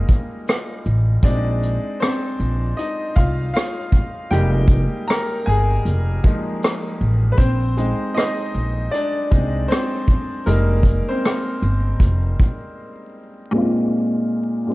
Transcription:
Already playing: G3 G#3 A#3 D#4 F4 D#5 F5
0.08 kick, closed hi-hat, shaker
0.47 cross-stick, closed hi-hat
0.86 A1, shaker
1.23 A#1 G#3 C4 D4 D#4 D5, kick, closed hi-hat
1.63 closed hi-hat, shaker
2.00 C4 C5, cross-stick, closed hi-hat
2.40 A#1, shaker
2.77 D#4 D#5, closed hi-hat
3.16 C2 F4 F5, kick, shaker
3.54 F4 F5, cross-stick, closed hi-hat
3.92 kick, shaker
4.31 F1 G3 G#3 A#3 D#4 G4 G5, closed hi-hat
4.68 kick, shaker
5.08 A#4 A#5, cross-stick, closed hi-hat
5.46 G1 G#4 G#5, shaker
5.85 F1, closed hi-hat
6.24 F3 G#3 A#3 D#4, kick, closed hi-hat, shaker
6.62 cross-stick, closed hi-hat
7.01 A1, shaker
7.32 B4
7.38 A#1 C4 C5, kick, closed hi-hat
7.77 G#3 C4 D#4, closed hi-hat, shaker
8.14 D#4 D#5, cross-stick, closed hi-hat
8.54 A#1, shaker
8.91 D4 D5, closed hi-hat
9.31 C2 G#3 C4 D#4, kick, shaker
9.68 C4 C5, cross-stick, closed hi-hat
10.08 kick, shaker
10.46 F1 G3 G#3 A#3 D#4 A#4, closed hi-hat
10.83 kick, closed hi-hat, shaker
11.09 C4 C5
11.24 cross-stick, closed hi-hat
11.62 G1, shaker
12.00 F1, kick, closed hi-hat
12.39 kick, shaker
13.51 A#2 G#3 C4
13.56 D#4 F4
14.67 A#2 G#3 C4

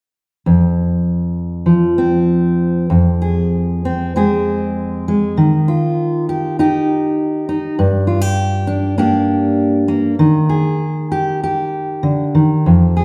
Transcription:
0.46 F2
1.66 F3
1.98 C4
2.90 F2
3.22 G#4
3.85 C4
4.16 G#3 C4 G#4
5.08 G#3
5.37 D#3
5.68 F4
6.29 G4
6.59 D#4 G4
7.49 D#4
7.79 G2
8.07 F4
8.21 G4
8.67 D4
8.98 A#3 D4 G4
9.88 A#3
10.19 D#3
10.49 G#4
11.12 G4
11.43 G4
12.03 D3
12.35 D#3
12.66 F2
12.97 G#4

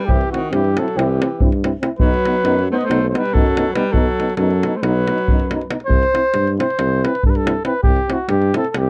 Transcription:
Already playing: G3
0.06 C2 C4 E4 G4, davul low
0.11 E3
0.21 davul high
0.32 D#3 C4 E4 F#4, davul high
0.51 G2 E3 C4 G4, davul high
0.55 E4
0.64 davul high
0.77 F#3 C4 E4 A4, davul high
0.88 davul high
0.96 C2 C4 E4 G4, davul high
1.00 E3
1.20 C4 E4, davul high
1.40 G2 C4 E4, davul low
1.52 davul high
1.63 C4 E4, davul high
1.81 C4 E4, davul high
1.99 B1 F#3 B3 D#4 B4, davul low
2.14 davul high
2.25 B3 D#4, davul high
2.43 F#2 B3 D#4, davul high
2.59 davul high
2.70 A3 B3 D#4 C5
2.76 D#5
2.81 A3 C5, davul high
2.89 B1 B3 D#4, davul high
3.09 A3 C5
3.14 G3 B3 D#4, davul high
3.18 B4
3.26 davul high
3.32 F#2 F#3 B3 A4, davul low
3.37 D#4
3.46 davul high
3.57 B3 D#4, davul high
3.73 G3 B3 D#4 B4, davul high
3.92 B1 F#3 B3 D#4 A4, davul low
4.19 B3 D#4, davul high
4.30 davul high
4.36 F#2 F#3 A4, davul high
4.40 B3 D#4
4.51 davul high
4.63 B3 D#4, davul high
4.76 A3 C5
4.82 B1 F#3 B3 D#4 B4, davul high
5.07 B3 D#4, davul high
5.18 davul high
5.28 F#2 B3 D#4, davul low
5.40 davul high
5.50 B3 D#4, davul high
5.61 davul high
5.69 B3 D#4, davul high
5.80 davul high
5.87 C2 C5, davul low
6.03 davul high
6.14 C4 E4, davul high
6.34 G2, davul high
6.47 davul high
6.58 C4 E4 C5, davul high
6.70 davul high
6.79 C2, davul high
7.04 C4 E4 B4, davul high
7.15 davul high
7.23 G2 A4, davul low
7.30 B4
7.35 A4, davul high
7.46 C4 E4, davul high
7.65 C4 E4 B4, davul high
7.83 C2 G4, davul low
7.96 davul high
8.09 C4 E4, davul high
8.13 F#4
8.29 G2 G4, davul high
8.42 davul high
8.54 C4 E4 A4, davul high
8.65 davul high
8.70 A4
8.74 C2 G4, davul high

